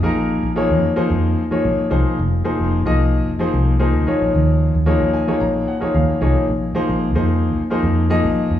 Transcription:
<<
  \new Staff \with { instrumentName = "Grand piano" } { \time 4/4 \key bes \minor \tempo 4 = 112 << { r1 | r1 | r4. aes''8 bes''8 ges''8 f''8 des''8 | r1 | } \\ { <f bes ees' aes' bes'>8. r16 <f bes ees' aes' des''>8 r16 <f bes ees' aes' c''>8. r16 <f bes ees' aes' des''>8 r16 <f bes ees' aes' c''>8 | r8 <f bes ees' aes' c''>8 r16 <f bes ees' aes' ees''>8. r16 <f bes ees' aes' c''>8 r16 <f bes ees' aes' c''>8 <f bes ees' aes' des''>8~ | <f bes ees' aes' des''>8. r16 <f bes ees' aes' des''>8 r16 <f bes ees' aes' des''>8. r16 <f bes ees' aes' des''>8 r16 <f bes ees' aes'>8 | r8 <f bes ees' aes' c''>8 r16 <f bes ees' aes' c''>8. r16 <f bes ees' aes' c''>8 r16 <f bes ees' aes' ees''>8. r16 | } >> }
  \new Staff \with { instrumentName = "Fingered electric bass" } { \clef bass \time 4/4 \key bes \minor bes,,8. bes,,8 f,16 r8 f,8 r8 bes,,16 r16 c,16 r16 | f,,8 r16 f,,8 c,8. f,,8 c,8. d,16 r16 bes,,16 | ees,8. ees,8 bes,,16 r8 bes,,8 r8 ees,16 r16 c,16 r16 | bes,,8 r16 bes,,8 f,8. bes,,8 f,8. bes,,16 r16 f,16 | }
>>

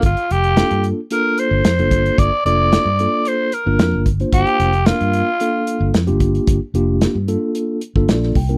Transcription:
<<
  \new Staff \with { instrumentName = "Tenor saxophone" } { \time 4/4 \key g \minor \tempo 4 = 112 f'8 g'4 r8 bes'8 c''4. | d''8 d''4. c''8 bes'4 r8 | g'4 f'2 r4 | r1 | }
  \new Staff \with { instrumentName = "Tine electric piano" } { \time 4/4 \key g \minor << { r1 | r1 | r1 | r2. d''8 g''8 | } \\ { r4 <bes d' f' a'>8. r16 <bes d' f' a'>4 r16 <bes d' f' a'>8.~ | <bes d' f' a'>16 r16 <bes d' f' a'>8. r16 <bes d' f' a'>4 r16 <bes d' f' bes'>8. r16 <bes d' f' c''>16~ | <bes d' f' c''>8. r16 <bes d' f' bes'>8. r16 <bes d' f' a'>4 r16 <bes d' f' g'>8.~ | <bes d' f' g'>16 r16 <bes d' f' g'>8. r16 <bes d' f' a'>4 r16 <bes d' f' a'>8. r16 <bes d' f' bes'>16 | } >> }
  \new Staff \with { instrumentName = "Fingered electric bass" } { \clef bass \time 4/4 \key g \minor g,,16 r16 f,,8. g,8 r4 g,,16 f,16 g,,8. | g,,16 r16 f,,8. g,8 r4 g,,16 f,16 g,,8. | g,,16 r16 f,,8. g,8 r4 g,,16 f,16 g,,8. | g,,16 r16 f,,8. g,8 r4 g,,16 bes,,8 c,8 | }
  \new DrumStaff \with { instrumentName = "Drums" } \drummode { \time 4/4 <hh bd>16 hh16 hh16 hh16 <hh sn>16 hh16 hh8 hh8 hh8 <hh sn>16 hh16 <hh bd>16 hh16 | <hh bd>8 hh8 <hh sn>8 hh8 hh8 hh8 <hh sn>8 <hh bd>16 hh16 | <hh bd>16 hh16 hh16 hh16 <hh sn>16 hh16 hh8 hh8 hh8 <hh sn>16 hh16 <hh bd>16 hh16 | <hh bd>8 hh8 <hh sn>8 hh8 hh8 hh16 bd16 <hh sn>16 sn16 <hho bd>16 hh16 | }
>>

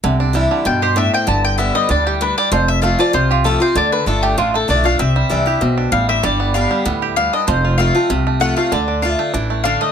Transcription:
<<
  \new Staff \with { instrumentName = "Mandolin" } { \time 4/4 \key c \major \tempo 4 = 193 r2 g''8 c''8 e''8 g''8 | a''8 g''8 e''8 ees''8 d''8 g'8 b'8 d''8 | c''8 e''8 f''8 d''8 c''8 f'8 a'8 c''8 | d''8 b'8 a'8 g'8 f'8 a'8 d''8 f''8 |
e''2. f''8 e''8 | d''4 f''4 r4 f''8 ees''8 | c''4 f''4 r4 fis''8 f''8 | d''4 f''4 r4 f''8 ees''8 | }
  \new Staff \with { instrumentName = "Five-string banjo" } { \time 4/4 \key c \major d8 d'8 g8 d8 d'8 g'8 d'8 c'8 | d4 b8 g8 d'8 g8 d'8 g8 | f4 a8 f8 f'8 g'8 f'8 c'8 | d8 d'8 d'8 a8 d'8 a8 d'8 a8 |
c'8 g8 d'8 g'8 c'8 d'8 g8 c'8 | g8 b8 d'8 g8 b8 g'8 b8 d'8 | f8 f'8 c'8 a8 f'8 a8 f'8 a8 | d8 d'8 d'8 a8 d'8 a8 d'8 a8 | }
  \new Staff \with { instrumentName = "Steel-string acoustic guitar" } { \time 4/4 \key c \major << { r4 <e g d' e'>4 r2 | r4 <d g b g'>4 r2 | r4 <f a c' f'>8 <c' f'>8 r4 <f a c' f'>8 <c' f'>8 | r4 <d a d' f'>4 r4 <d a d' f'>8 <d' f'>8 |
r4 <e g d' e'>8 <d' e'>8 r2 | r4 <d g b g'>4 r2 | r4 <f a c' f'>8 <c' f'>8 r4 <f a c' f'>8 <c' f'>8 | r4 <d a d' f'>4 r2 | } \\ { c2 b,4 a,4 | g,2 a,4 g,4 | f,2 c2 | d2 a,2 |
c2 b,4 a,4 | g,2 a,4 g,4 | f,2 c2 | d2 e4 d4 | } >> }
  \new Staff \with { instrumentName = "Upright bass" } { \clef bass \time 4/4 \key c \major c,2 g,2 | g,,2 d,2 | f,,2 c,2 | d,4 g,,4 a,,4 b,,4 |
c,4 c,4 b,,4 a,,4 | g,,2 d,2 | f,,2 c,2 | d,2 a,,2 | }
>>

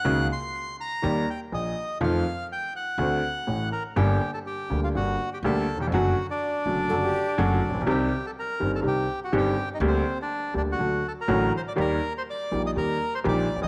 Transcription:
<<
  \new Staff \with { instrumentName = "Bandoneon" } { \time 4/4 \key d \phrygian \tempo 4 = 123 ges''8 c'''4 bes''4 g''8 ees''4 | f''4 g''8 ges''2 bes'8 | \key g \minor g'8. a'16 g'8. f'16 fis'8. g'16 a'8. g'16 | fis'8. d'2.~ d'16 |
g'8. a'16 bes'8. a'16 g'8. fis'16 g'8. ees'16 | c'8. d'8. d'16 fis'8. a'16 bes'8. c''16 d''16 | bes'8. c''16 d''8. ees''16 bes'8. c''16 d''8. ees''16 | }
  \new Staff \with { instrumentName = "Flute" } { \time 4/4 \key d \phrygian r1 | r1 | \key g \minor r1 | r2 a'16 g'8. fis'8. r16 |
r1 | r1 | r1 | }
  \new Staff \with { instrumentName = "Grand piano" } { \clef bass \time 4/4 \key d \phrygian <des, des ees bes des' ges'>8 r4. <ees, ees g bes g'>8 r8 <bes,, bes,>8 r8 | <f, ees f a c' f'>8 r4. <d, d a c' fis'>8 r8 <a,, a,>8 r8 | \key g \minor <g,, g, d g bes g'>8 r4 <d, d g bes g'>8 <g,, g, d g bes g'>8 r8 <d, d g bes g'>8 r32 ees,32 e,32 f,32 | <fis, d fis a fis'>8 r4 <fis, d fis a fis'>8 <fis, d fis a fis'>8 r8 <fis, d fis a fis'>8 r32 a,,32 bes,,32 b,,32 |
<c, c ees g c' g'>8 r4 <g,, g, ees g c' g'>8 <c, c ees g c' g'>8 r8 <g,, g, ees g c' g'>8 r8 | <d, d g bes g'>8 r4 <d, d g bes g'>8 <d, d fis a fis'>8 r8 <a,, a, d fis a fis'>8 r8 | <ees, ees g bes g'>8 r4 <bes,, bes, ees g bes g'>8 <ees, ees g bes g'>8 r8 <bes,, bes, ees g bes g'>8 r32 a,,32 bes,,32 r32 | }
  \new Staff \with { instrumentName = "Upright bass" } { \clef bass \time 4/4 \key d \phrygian des,16. r4. r32 ees,16. r8 r32 bes,,16. r8 r32 | f,16. r4. r32 d,16. r8 r32 a,,16. r8 r32 | \key g \minor g,,16. r4 r32 d,16. r32 g,,16. r8 r32 d,16. r8 r32 | fis,,16. r4 r32 fis,,16. r32 fis,,16. r8 r32 fis,,16. r16 a,,32 bes,,32 b,,32 |
c,16. r4 r32 g,,16. r32 c,16. r8 r32 g,,16. r8 r32 | d,16. r4 r32 d,16. r32 d,16. r8 r32 a,,16. r8 r32 | ees,16. r4 r32 bes,,16. r32 ees,16. r8 r32 bes,,16. r16 a,,32 bes,,32 r32 | }
>>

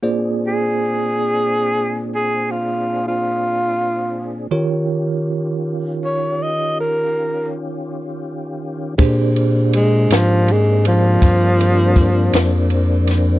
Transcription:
<<
  \new Staff \with { instrumentName = "Tine electric piano" } { \time 12/8 \key bes \mixolydian \tempo 4. = 54 <bes f' aes' c'' d''>1. | <ees f' g' bes' des''>1. | <d' g' aes' c''>1. | }
  \new Staff \with { instrumentName = "Tenor saxophone" } { \time 12/8 \key bes \mixolydian r8 aes'2~ aes'16 aes'8 f'8. f'2 | r2 des''8 ees''8 bes'4 r2 | r4 aes8 f8 aes8 f2. r8 | }
  \new Staff \with { instrumentName = "Tonewheel organ" } { \time 12/8 \key bes \mixolydian <bes, c' d' aes'>1. | <ees des' f' g'>1. | <bes c' d'>1. | }
  \new Staff \with { instrumentName = "Sub bass" } { \clef bass \time 12/8 \key bes \mixolydian r1. | r1. | bes,4. aes,4. g,4. f,4. | }
  \new DrumStaff \with { instrumentName = "Drums" } \drummode { \time 12/8 r4. r4. r4. r4. | r4. r4. r4. r4. | <bd cymr>8 cymr8 cymr8 <cymr sn>8 cymr8 cymr8 <bd cymr>8 cymr8 <bd cymr>8 <cymr sn>8 cymr8 <cymr sn>8 | }
>>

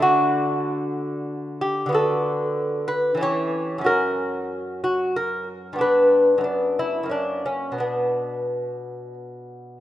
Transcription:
<<
  \new Staff \with { instrumentName = "Lute" } { \time 3/4 \key d \major \tempo 4 = 92 fis'2~ fis'8 g'8 | \key b \minor a'4. b'8 cis''4 | ais'4. fis'8 ais'8 r8 | b'4. e'8 d'8 cis'8 |
b2 r4 | }
  \new Staff \with { instrumentName = "Lute" } { \time 3/4 \key d \major <d a d'>2. | \key b \minor <d b fis'>2 <e cis' g'>4 | <fis, cis' fis'>2. | <g, b d'>4 <fis, b d'>4 <fis, ais cis'>4 |
<b, d'>2. | }
>>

